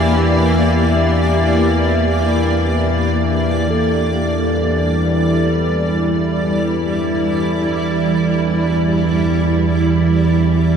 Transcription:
0, 0, Header, 1, 4, 480
1, 0, Start_track
1, 0, Key_signature, 1, "minor"
1, 0, Tempo, 500000
1, 10338, End_track
2, 0, Start_track
2, 0, Title_t, "Singing bowl"
2, 0, Program_c, 0, 14
2, 3557, Note_on_c, 0, 69, 51
2, 10338, Note_off_c, 0, 69, 0
2, 10338, End_track
3, 0, Start_track
3, 0, Title_t, "Ambient pad"
3, 0, Program_c, 1, 92
3, 0, Note_on_c, 1, 58, 70
3, 0, Note_on_c, 1, 67, 73
3, 0, Note_on_c, 1, 74, 79
3, 3555, Note_off_c, 1, 58, 0
3, 3565, Note_on_c, 1, 55, 57
3, 4942, Note_on_c, 1, 64, 69
3, 5060, Note_off_c, 1, 67, 0
3, 10338, Note_off_c, 1, 55, 0
3, 10338, Note_off_c, 1, 64, 0
3, 10338, Note_off_c, 1, 74, 0
3, 10338, End_track
4, 0, Start_track
4, 0, Title_t, "Synth drone"
4, 0, Program_c, 2, 95
4, 0, Note_on_c, 2, 40, 77
4, 0, Note_on_c, 2, 52, 73
4, 3506, Note_off_c, 2, 52, 0
4, 3517, Note_on_c, 2, 52, 65
4, 3521, Note_off_c, 2, 40, 0
4, 3533, Note_on_c, 2, 40, 66
4, 10338, Note_off_c, 2, 40, 0
4, 10338, Note_off_c, 2, 52, 0
4, 10338, End_track
0, 0, End_of_file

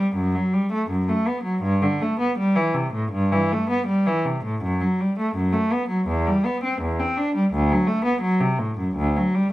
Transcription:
0, 0, Header, 1, 2, 480
1, 0, Start_track
1, 0, Tempo, 745342
1, 86, Time_signature, 4, 2, 24, 8
1, 2967, Tempo, 726392
1, 6218, End_track
2, 0, Start_track
2, 0, Title_t, "Cello"
2, 0, Program_c, 0, 42
2, 0, Note_on_c, 0, 55, 50
2, 91, Note_off_c, 0, 55, 0
2, 99, Note_on_c, 0, 42, 65
2, 210, Note_off_c, 0, 42, 0
2, 225, Note_on_c, 0, 54, 54
2, 335, Note_off_c, 0, 54, 0
2, 345, Note_on_c, 0, 55, 58
2, 455, Note_off_c, 0, 55, 0
2, 466, Note_on_c, 0, 57, 58
2, 573, Note_off_c, 0, 57, 0
2, 577, Note_on_c, 0, 42, 55
2, 688, Note_off_c, 0, 42, 0
2, 702, Note_on_c, 0, 57, 56
2, 813, Note_off_c, 0, 57, 0
2, 822, Note_on_c, 0, 59, 53
2, 924, Note_on_c, 0, 54, 56
2, 932, Note_off_c, 0, 59, 0
2, 1040, Note_off_c, 0, 54, 0
2, 1046, Note_on_c, 0, 43, 72
2, 1162, Note_off_c, 0, 43, 0
2, 1174, Note_on_c, 0, 50, 60
2, 1287, Note_off_c, 0, 50, 0
2, 1297, Note_on_c, 0, 57, 56
2, 1409, Note_off_c, 0, 57, 0
2, 1413, Note_on_c, 0, 59, 53
2, 1523, Note_off_c, 0, 59, 0
2, 1532, Note_on_c, 0, 55, 64
2, 1642, Note_off_c, 0, 55, 0
2, 1650, Note_on_c, 0, 52, 59
2, 1764, Note_off_c, 0, 52, 0
2, 1766, Note_on_c, 0, 48, 52
2, 1884, Note_off_c, 0, 48, 0
2, 1890, Note_on_c, 0, 45, 49
2, 2007, Note_on_c, 0, 43, 67
2, 2008, Note_off_c, 0, 45, 0
2, 2129, Note_off_c, 0, 43, 0
2, 2137, Note_on_c, 0, 52, 57
2, 2257, Note_off_c, 0, 52, 0
2, 2268, Note_on_c, 0, 57, 61
2, 2381, Note_off_c, 0, 57, 0
2, 2382, Note_on_c, 0, 59, 60
2, 2488, Note_on_c, 0, 55, 60
2, 2495, Note_off_c, 0, 59, 0
2, 2607, Note_off_c, 0, 55, 0
2, 2620, Note_on_c, 0, 52, 56
2, 2734, Note_off_c, 0, 52, 0
2, 2738, Note_on_c, 0, 48, 50
2, 2852, Note_off_c, 0, 48, 0
2, 2863, Note_on_c, 0, 45, 53
2, 2972, Note_off_c, 0, 45, 0
2, 2973, Note_on_c, 0, 42, 67
2, 3090, Note_off_c, 0, 42, 0
2, 3100, Note_on_c, 0, 54, 61
2, 3216, Note_off_c, 0, 54, 0
2, 3229, Note_on_c, 0, 55, 57
2, 3341, Note_off_c, 0, 55, 0
2, 3352, Note_on_c, 0, 57, 55
2, 3458, Note_on_c, 0, 42, 64
2, 3460, Note_off_c, 0, 57, 0
2, 3574, Note_off_c, 0, 42, 0
2, 3576, Note_on_c, 0, 57, 60
2, 3696, Note_off_c, 0, 57, 0
2, 3705, Note_on_c, 0, 59, 58
2, 3816, Note_on_c, 0, 54, 53
2, 3820, Note_off_c, 0, 59, 0
2, 3933, Note_off_c, 0, 54, 0
2, 3937, Note_on_c, 0, 40, 69
2, 4054, Note_off_c, 0, 40, 0
2, 4069, Note_on_c, 0, 55, 62
2, 4182, Note_off_c, 0, 55, 0
2, 4184, Note_on_c, 0, 59, 62
2, 4301, Note_off_c, 0, 59, 0
2, 4308, Note_on_c, 0, 60, 58
2, 4420, Note_off_c, 0, 60, 0
2, 4426, Note_on_c, 0, 40, 60
2, 4539, Note_off_c, 0, 40, 0
2, 4544, Note_on_c, 0, 60, 61
2, 4658, Note_on_c, 0, 62, 60
2, 4659, Note_off_c, 0, 60, 0
2, 4775, Note_off_c, 0, 62, 0
2, 4781, Note_on_c, 0, 55, 59
2, 4892, Note_off_c, 0, 55, 0
2, 4903, Note_on_c, 0, 38, 78
2, 5011, Note_off_c, 0, 38, 0
2, 5025, Note_on_c, 0, 54, 59
2, 5125, Note_on_c, 0, 57, 63
2, 5133, Note_off_c, 0, 54, 0
2, 5241, Note_off_c, 0, 57, 0
2, 5241, Note_on_c, 0, 59, 57
2, 5349, Note_on_c, 0, 54, 68
2, 5356, Note_off_c, 0, 59, 0
2, 5470, Note_off_c, 0, 54, 0
2, 5477, Note_on_c, 0, 48, 62
2, 5597, Note_off_c, 0, 48, 0
2, 5599, Note_on_c, 0, 45, 57
2, 5721, Note_off_c, 0, 45, 0
2, 5726, Note_on_c, 0, 42, 53
2, 5842, Note_on_c, 0, 38, 74
2, 5846, Note_off_c, 0, 42, 0
2, 5966, Note_off_c, 0, 38, 0
2, 5980, Note_on_c, 0, 54, 61
2, 6095, Note_off_c, 0, 54, 0
2, 6099, Note_on_c, 0, 55, 67
2, 6213, Note_off_c, 0, 55, 0
2, 6218, End_track
0, 0, End_of_file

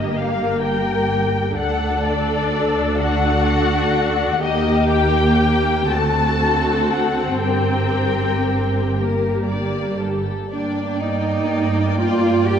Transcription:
0, 0, Header, 1, 6, 480
1, 0, Start_track
1, 0, Key_signature, -2, "minor"
1, 0, Tempo, 955414
1, 793, Time_signature, 6, 3, 24, 8
1, 2706, Tempo, 998336
1, 3186, Tempo, 1034483
1, 5106, Tempo, 975610
1, 6125, End_track
2, 0, Start_track
2, 0, Title_t, "Violin section"
2, 0, Program_c, 0, 48
2, 0, Note_on_c, 0, 75, 47
2, 62, Note_off_c, 0, 75, 0
2, 76, Note_on_c, 0, 77, 53
2, 312, Note_on_c, 0, 79, 57
2, 314, Note_off_c, 0, 77, 0
2, 784, Note_off_c, 0, 79, 0
2, 792, Note_on_c, 0, 78, 63
2, 1030, Note_off_c, 0, 78, 0
2, 1036, Note_on_c, 0, 74, 60
2, 1509, Note_on_c, 0, 78, 77
2, 1510, Note_off_c, 0, 74, 0
2, 2210, Note_off_c, 0, 78, 0
2, 2218, Note_on_c, 0, 75, 70
2, 2456, Note_off_c, 0, 75, 0
2, 2463, Note_on_c, 0, 79, 70
2, 2932, Note_off_c, 0, 79, 0
2, 2940, Note_on_c, 0, 81, 72
2, 3423, Note_off_c, 0, 81, 0
2, 3427, Note_on_c, 0, 78, 58
2, 3668, Note_off_c, 0, 78, 0
2, 3671, Note_on_c, 0, 79, 52
2, 4380, Note_off_c, 0, 79, 0
2, 5109, Note_on_c, 0, 79, 49
2, 6125, Note_off_c, 0, 79, 0
2, 6125, End_track
3, 0, Start_track
3, 0, Title_t, "Violin section"
3, 0, Program_c, 1, 48
3, 58, Note_on_c, 1, 70, 49
3, 768, Note_off_c, 1, 70, 0
3, 784, Note_on_c, 1, 69, 57
3, 1491, Note_off_c, 1, 69, 0
3, 1505, Note_on_c, 1, 66, 62
3, 2222, Note_off_c, 1, 66, 0
3, 2225, Note_on_c, 1, 67, 62
3, 2929, Note_off_c, 1, 67, 0
3, 2943, Note_on_c, 1, 69, 60
3, 3667, Note_off_c, 1, 69, 0
3, 3671, Note_on_c, 1, 70, 45
3, 4347, Note_off_c, 1, 70, 0
3, 4392, Note_on_c, 1, 70, 38
3, 4615, Note_off_c, 1, 70, 0
3, 4627, Note_on_c, 1, 74, 36
3, 4865, Note_off_c, 1, 74, 0
3, 4865, Note_on_c, 1, 69, 31
3, 5101, Note_on_c, 1, 74, 51
3, 5103, Note_off_c, 1, 69, 0
3, 6125, Note_off_c, 1, 74, 0
3, 6125, End_track
4, 0, Start_track
4, 0, Title_t, "Viola section"
4, 0, Program_c, 2, 48
4, 0, Note_on_c, 2, 58, 39
4, 0, Note_on_c, 2, 67, 36
4, 769, Note_off_c, 2, 58, 0
4, 769, Note_off_c, 2, 67, 0
4, 786, Note_on_c, 2, 62, 46
4, 787, Note_on_c, 2, 69, 46
4, 2200, Note_off_c, 2, 62, 0
4, 2201, Note_off_c, 2, 69, 0
4, 2223, Note_on_c, 2, 58, 58
4, 2225, Note_on_c, 2, 67, 55
4, 2928, Note_off_c, 2, 58, 0
4, 2929, Note_off_c, 2, 67, 0
4, 2945, Note_on_c, 2, 66, 47
4, 2946, Note_on_c, 2, 60, 48
4, 3668, Note_off_c, 2, 66, 0
4, 3668, Note_on_c, 2, 67, 36
4, 4394, Note_off_c, 2, 60, 0
4, 4399, Note_on_c, 2, 58, 35
4, 4994, Note_off_c, 2, 67, 0
4, 5016, Note_off_c, 2, 58, 0
4, 5118, Note_on_c, 2, 58, 48
4, 6125, Note_off_c, 2, 58, 0
4, 6125, End_track
5, 0, Start_track
5, 0, Title_t, "Cello section"
5, 0, Program_c, 3, 48
5, 0, Note_on_c, 3, 43, 37
5, 772, Note_off_c, 3, 43, 0
5, 788, Note_on_c, 3, 38, 45
5, 2222, Note_off_c, 3, 38, 0
5, 2225, Note_on_c, 3, 39, 52
5, 2929, Note_off_c, 3, 39, 0
5, 2941, Note_on_c, 3, 38, 52
5, 3666, Note_off_c, 3, 38, 0
5, 3669, Note_on_c, 3, 43, 36
5, 4995, Note_off_c, 3, 43, 0
5, 5109, Note_on_c, 3, 62, 56
5, 5333, Note_off_c, 3, 62, 0
5, 5347, Note_on_c, 3, 63, 60
5, 5831, Note_off_c, 3, 63, 0
5, 5833, Note_on_c, 3, 65, 74
5, 6064, Note_off_c, 3, 65, 0
5, 6073, Note_on_c, 3, 67, 80
5, 6125, Note_off_c, 3, 67, 0
5, 6125, End_track
6, 0, Start_track
6, 0, Title_t, "Double bass section"
6, 0, Program_c, 4, 48
6, 0, Note_on_c, 4, 31, 41
6, 771, Note_off_c, 4, 31, 0
6, 783, Note_on_c, 4, 38, 51
6, 2218, Note_on_c, 4, 39, 55
6, 2219, Note_off_c, 4, 38, 0
6, 2925, Note_off_c, 4, 39, 0
6, 2939, Note_on_c, 4, 38, 50
6, 3663, Note_on_c, 4, 31, 38
6, 3665, Note_off_c, 4, 38, 0
6, 4992, Note_off_c, 4, 31, 0
6, 5106, Note_on_c, 4, 43, 48
6, 6125, Note_off_c, 4, 43, 0
6, 6125, End_track
0, 0, End_of_file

